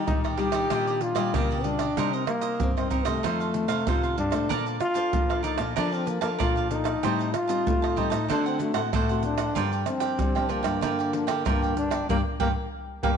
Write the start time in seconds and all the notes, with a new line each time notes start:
Already playing: G3 F4 G4 D5 D#5
0.07 A#2 D#3 D#4, pandeiro, shaker, surdo
0.24 G4 D5 D#5, pandeiro, tamborim, shaker
0.37 G3 D4 F4 G4 D5 D#5, pandeiro
0.52 D#3 G4 D5 D#5, pandeiro, tamborim, shaker
0.70 A#2 D#3 G3 D4 F4 G4 D5 D#5, pandeiro, tamborim, shaker, surdo
0.87 G4 D5 D#5, pandeiro, shaker
1.01 F4, muted cavaquinho stroke, pandeiro
1.15 A#2 G3 D4 F4 G4 D5 D#5, pandeiro, tamborim, shaker
1.34 A#2 C#3 A#3 D4 G4 D5 D#5, pandeiro, tamborim, shaker, surdo
1.50 G4 D5 D#5, pandeiro, shaker
1.64 G3 D4 F4, pandeiro
1.79 G4 D5 D#5, pandeiro, tamborim, shaker
1.97 C3 G3 A#3 D#4 A#4 C5 D#5, pandeiro, shaker, surdo
2.13 C4 A#4 C5 D#5, pandeiro, shaker
2.27 G3 A#3 D#4, muted cavaquinho stroke, pandeiro, tamborim, shaker
2.41 A#4 C5 D#5, pandeiro, shaker
2.60 G2 C4, pandeiro, shaker, surdo
2.77 G3 A#3 C4 D#4 A#4 C5 D#5, pandeiro, tamborim, shaker
2.90 C4 D#4 A#4 C5 D#5, pandeiro, shaker, surdo
3.05 C3 A3 A#4 C5 D#5, pandeiro, tamborim, shaker
3.23 F2 D#3 F3 A3 C4 D#4 A4 C5 F5, pandeiro, tamborim, shaker, surdo
3.40 A4 C5 F5, pandeiro, shaker
3.54 D#3 A3 C4, muted cavaquinho stroke, pandeiro, shaker
3.68 C3 A4 C5 F5, pandeiro, tamborim, shaker
3.87 C3 D#3 A3 C4 D#4 F4 A4 C5 F5, pandeiro, tamborim, shaker, surdo
4.03 A4 C5 F5, pandeiro, shaker
4.18 G2 D4, pandeiro
4.31 A2 D4 A4 C5 F5, pandeiro, tamborim, shaker
4.49 A#2 A#3 A#4 D5 F5 A5, pandeiro, shaker, surdo
4.66 D5 F5 A5, pandeiro, shaker
4.80 F4, muted cavaquinho stroke, pandeiro, tamborim, shaker
4.94 D4 A4 C5 D5 F5 A5, pandeiro, shaker
5.13 F3 A#3, pandeiro, shaker, surdo
5.29 D4 A4 C5 D5 F5 A5, pandeiro, tamborim, shaker
5.43 D#4 A#4 D5 F5 A5, pandeiro, shaker
5.58 A#2 D5 F5 A5, pandeiro, tamborim, shaker
5.76 F3 A#3 D4 A4 A#4 C5 D5 F5 A5, pandeiro, tamborim, shaker, surdo
5.92 C4 D5 F5 A5, pandeiro, shaker
6.06 A#3, muted cavaquinho stroke, pandeiro, shaker
6.21 F3 A#3 D4 A4 C5 D5 F5 A5, pandeiro, tamborim, shaker
6.39 A#2 F3 F4 A#4 D5 F5 A5, pandeiro, tamborim, shaker, surdo
6.56 D5 F5 A5, pandeiro, shaker
6.71 D4 D#4 A4 C5, pandeiro, shaker
6.84 D5 F5 A5, pandeiro, tamborim, shaker
7.03 A2 G3 C4 D#4 G4 C5 D#5 A5, pandeiro, shaker, surdo
7.19 C5 D#5 A5, pandeiro, shaker
7.34 F4, muted cavaquinho stroke, pandeiro, tamborim, shaker
7.48 G3 C4 D#4 C5 D#5 A5, pandeiro, shaker
7.66 A2 A3, pandeiro, shaker, surdo
7.82 C5 D#5 A5, pandeiro, tamborim, shaker
7.96 G3 C4 D#4 G4 C5 D#5 A5, pandeiro, surdo
8.10 A2 C5 D#5 A5, pandeiro, tamborim, shaker
8.28 D3 A3 C4 D4 F#4 A4 C5 F#5, pandeiro, tamborim, shaker, surdo
8.46 C4 A4 C5 F#5, pandeiro, shaker
8.59 A3 C4 F#4, muted cavaquinho stroke, pandeiro, shaker
8.74 A2 A3 A4 C5 F#5, pandeiro, tamborim, shaker
8.93 A2 A3 D4 A4 C5 F#5, pandeiro, tamborim, shaker, surdo
9.09 A3 C4 F#4 A4 C5 F#5, pandeiro, shaker
9.23 D4, pandeiro, shaker
9.38 F3 A#3 D4 A4 C5 F#5, pandeiro, tamborim, shaker
9.55 G2 F4 A#4 D5 G5, pandeiro, shaker, surdo
9.72 A#4 D5 G5, pandeiro, shaker
9.86 F3 A#3 C4 D4, muted cavaquinho stroke, pandeiro, tamborim, shaker
10.00 A#4 D5 G5, pandeiro, shaker
10.19 D3 G3, pandeiro, shaker, surdo
10.35 F3 A#3 D4 A#4 D5 G5, pandeiro, tamborim, shaker
10.49 A#3 F4 A#4 D5 G5, pandeiro
10.63 G2 A#4 D5 G5, pandeiro, tamborim, shaker
10.81 G2 D3 F4 A#4 D5 G5, pandeiro, tamborim, shaker, surdo
10.99 A#4 D5 G5, pandeiro, shaker
11.13 F3 A#3 D4, muted cavaquinho stroke, pandeiro
11.27 D3 A#4 D5 G5, pandeiro, tamborim, shaker
11.45 G2 D3 F3 A#3 D4 F4 A#4 D5 G5, pandeiro, tamborim, shaker, surdo
11.62 A#4 D5 G5, pandeiro, shaker
11.77 D4, pandeiro, shaker
11.90 F3 A#3 D4 A#4 D5 G5, pandeiro, tamborim, shaker
12.09 G2 G3 A#3 D4 D5 F5 G5, surdo
12.40 G2 G3 A#3 D4 D5 F5 G5, surdo
13.03 G2 G3 A#3 D4 D5 F5 G5, surdo